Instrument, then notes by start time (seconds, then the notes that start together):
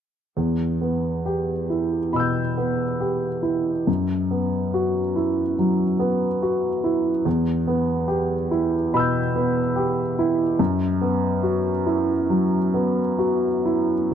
grand piano
0.37 E2
0.81 B3
1.26 G4
1.70 E4
2.13 B2 B5 E6
2.20 G6
2.58 B3
3.00 G4
3.43 E4
3.87 F#2
4.31 B3
4.74 F#4
5.16 E4
5.59 F#3
5.99 B3
6.43 F#4
6.84 E4
7.25 E2
7.67 B3
8.08 G4
8.51 E4
8.94 B2 B5 E6
9.00 G6
9.36 B3
9.76 G4
10.19 E4
10.59 F#2
11.01 B3
11.43 F#4
11.86 E4
12.30 F#3
12.74 B3
13.19 F#4
13.65 E4